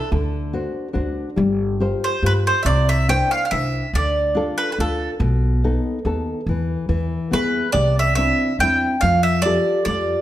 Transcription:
0.12 0.67 D2 loud
0.12 0.53 D3 medium
0.53 0.88 D4 soft
0.53 0.87 F#4 soft
0.53 0.88 C5 medium
0.93 1.23 D2 medium
0.93 1.28 D4 soft
0.93 1.29 F#4 soft
0.93 1.29 C5 soft
1.36 1.93 G1 loud
1.36 1.79 G3 soft
1.80 2.15 F4 soft
1.80 2.15 G4 soft
1.80 2.15 C5 medium
2.04 2.23 C5 medium
2.23 2.51 G2 medium
2.23 2.57 F4 soft
2.23 2.58 G4 soft
2.23 2.32 B4 medium
2.23 2.58 C5 soft
2.47 2.61 C5 medium
2.63 3.21 C2 loud
2.63 3.08 C3 medium
2.63 2.87 D5 medium
2.63 2.67 E5 medium
2.89 3.08 E5 medium
3.08 3.43 D4 soft
3.08 3.44 E4 soft
3.08 3.43 C5 medium
3.08 3.31 G5 medium
3.31 3.44 F5 medium
3.45 3.51 F5 medium
3.51 3.79 C2 medium
3.51 3.86 D4 soft
3.51 3.86 E4 soft
3.51 3.86 C5 soft
3.51 3.91 E5 medium
3.93 4.49 D2 medium
3.93 4.36 D3 soft
3.93 4.55 D5 medium
4.35 4.69 D4 medium
4.35 4.70 F4 soft
4.35 4.71 A4 medium
4.58 4.71 B4 medium
4.72 4.79 B4 soft
4.79 5.06 D2 medium
4.79 5.13 D4 soft
4.79 5.13 F4 soft
4.79 5.13 A4 soft
4.79 5.10 A4 medium
5.19 5.75 B1 loud
5.19 5.61 B2 soft
5.64 5.98 B3 soft
5.64 5.98 D#4 soft
5.64 5.98 A4 medium
6.05 6.33 D#2 medium
6.05 6.39 B3 soft
6.05 6.40 D#4 soft
6.05 6.40 A4 soft
6.46 6.75 E2 medium
6.46 6.88 E3 medium
6.89 7.17 E2 medium
6.89 7.31 E3 medium
7.31 7.60 E2 medium
7.31 7.66 B3 soft
7.31 7.67 E4 soft
7.31 7.67 G#4 soft
7.31 7.72 B4 medium
7.72 8.30 C2 loud
7.72 8.15 C3 medium
7.72 7.94 D5 medium
7.99 8.14 E5 medium
8.15 8.51 C4 soft
8.15 8.52 D4 soft
8.15 8.52 E4 soft
8.15 8.56 E5 medium
8.59 8.87 E2 medium
8.59 8.95 C4 soft
8.59 8.95 D4 soft
8.59 8.95 E4 soft
8.59 9.00 G5 medium
9.01 9.57 F2 loud
9.01 9.44 F3 medium
9.01 9.22 F5 medium
9.23 9.45 E5 medium
9.42 9.79 F4 soft
9.42 9.82 D5 loud
9.46 9.79 G4 soft
9.46 9.79 A4 medium
9.85 10.14 F2 medium
9.85 10.21 F4 soft
9.85 10.21 G4 soft
9.85 10.21 A4 soft
9.85 10.21 D5 medium

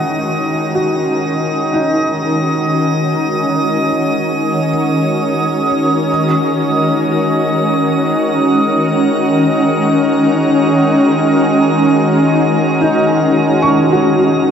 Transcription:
0.00 14.51 D#3 medium
0.00 14.51 G#3 medium
0.00 14.51 C#4 medium
0.00 14.51 F#4 medium
0.00 14.51 A#4 medium
0.00 14.51 D#5 medium
0.00 3.88 F#5 soft
0.00 0.18 A#5 soft
0.00 14.51 D#6 medium
0.75 4.69 F#4 medium
1.73 5.67 D#4 medium
12.81 14.51 D#4 soft
13.62 14.51 C#6 medium
13.92 14.51 F#4 medium

